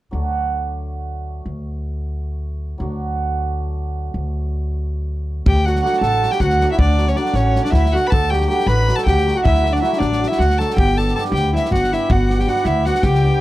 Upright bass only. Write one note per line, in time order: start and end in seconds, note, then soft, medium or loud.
0.13 1.44 D2 medium
1.46 2.77 D2 medium
2.80 4.11 D2 medium
4.14 5.44 D2 medium
5.46 5.79 D2 medium
6.01 6.25 A1 medium
6.40 6.64 D2 medium
6.78 7.12 D2 loud
7.34 7.57 A1 loud
7.72 7.96 D2 medium
8.12 8.45 D2 medium
8.66 8.90 A1 medium
9.06 9.30 D2 medium
9.45 9.78 D2 medium
10.00 10.23 A1 medium
10.39 10.62 D2 medium
10.77 11.10 G1 medium
11.32 11.55 D2 medium
11.71 11.95 G1 medium
12.10 12.43 G1 loud
12.65 12.88 D2 medium
13.03 13.27 C#2 medium